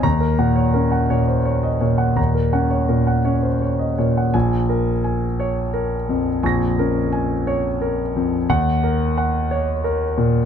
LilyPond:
<<
  \new Staff \with { instrumentName = "Grand piano" } { \time 6/8 \key bes \minor \tempo 4. = 58 << { bes''8 r2 r8 | r2. | aes''4 r2 | <des''' bes'''>2. |
ges''4 r2 | } \\ { r16 bes'16 ges''16 des''16 bes'16 ges''16 des''16 c''16 des''16 ees''16 des''16 ges''16 | bes''16 bes'16 ges''16 des''16 bes'16 ges''16 des''16 c''16 des''16 ees''16 des''16 ges''16 | r8 bes'8 aes''8 des''8 bes'8 f,8 | aes''8 bes'8 aes''8 des''8 bes'8 f,8 |
r8 bes'8 ges''8 des''8 bes'8 bes,8 | } >> }
  \new Staff \with { instrumentName = "Grand piano" } { \clef bass \time 6/8 \key bes \minor ees,8 bes,8 des'8 bes,4 bes,8 | ees,8 des'8 bes,8 des'4 bes,8 | bes,,2. | bes,,8 des'4 r4. |
ees,2. | }
>>